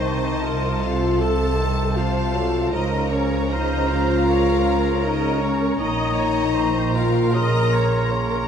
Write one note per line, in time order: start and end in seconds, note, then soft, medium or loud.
0.00 2.69 C2 medium
0.00 2.68 C3 medium
0.00 0.43 D#3 medium
0.00 0.65 D#4 medium
0.00 0.79 D#4 medium
0.00 0.42 C5 medium
0.00 1.20 C5 medium
0.00 0.78 D#5 medium
0.00 1.18 A5 medium
0.00 0.43 C#6 medium
0.41 1.20 F3 medium
0.41 0.81 A#4 medium
0.41 1.20 C6 medium
0.81 1.20 F4 medium
0.81 1.22 F4 medium
0.81 1.96 A4 medium
0.81 1.20 F5 medium
1.20 1.60 F3 medium
1.20 1.98 A4 medium
1.20 1.96 A4 loud
1.20 3.19 C5 medium
1.20 1.94 A5 medium
1.20 1.96 A5 medium
1.58 1.97 D#3 medium
1.96 2.33 F3 medium
1.96 2.72 F4 medium
1.96 2.46 F4 medium
1.96 2.34 C5 medium
1.96 2.72 F5 medium
1.96 2.71 A5 medium
1.96 2.76 A5 medium
2.33 2.75 F#3 medium
2.33 2.72 A4 medium
2.71 5.76 C#2 medium
2.71 5.76 C#3 medium
2.71 5.53 F3 medium
2.71 3.08 D#4 medium
2.71 3.11 D#4 medium
2.71 3.48 A#4 medium
2.71 3.10 D#5 medium
2.71 5.78 A#5 medium
2.71 3.24 A#5 medium
3.10 3.49 C#4 medium
3.10 3.53 C#4 medium
3.10 3.50 C#5 medium
3.50 3.89 D#4 medium
3.50 3.92 D#4 medium
3.50 4.29 A#4 medium
3.50 4.28 C5 medium
3.50 3.89 D#5 medium
3.50 6.56 A#5 medium
3.88 5.03 F4 medium
3.88 5.06 F4 medium
3.88 5.03 F5 medium
4.28 5.77 A#4 medium
4.28 4.65 C#5 medium
4.66 6.57 C#5 medium
5.04 5.42 D#4 medium
5.04 5.44 D#4 medium
5.04 5.42 D#5 medium
5.42 5.80 C#4 medium
5.42 5.80 C#5 medium
5.79 8.48 A#1 medium
5.79 8.48 A#2 medium
5.79 7.31 D#3 medium
5.79 6.93 D#4 loud
5.79 6.97 D#4 medium
5.79 6.17 D#5 medium
5.79 6.95 D#5 medium
5.79 7.32 A#5 medium
6.17 6.55 C#5 medium
6.55 6.95 C5 medium
6.55 7.35 C5 medium
6.55 6.94 C#6 medium
6.94 7.35 F4 medium
6.94 7.37 F4 medium
6.94 7.35 A#4 medium
6.94 7.34 F5 medium
6.94 8.48 C6 medium
7.33 8.08 C#3 medium
7.33 8.09 A#4 medium
7.33 8.10 A#4 medium
7.33 7.73 D#5 medium
7.33 8.48 A#5 medium
7.33 8.10 A#5 medium
7.73 8.10 C#5 medium
8.10 8.48 C#3 medium
8.10 8.46 A#4 medium
8.10 8.48 C#5 medium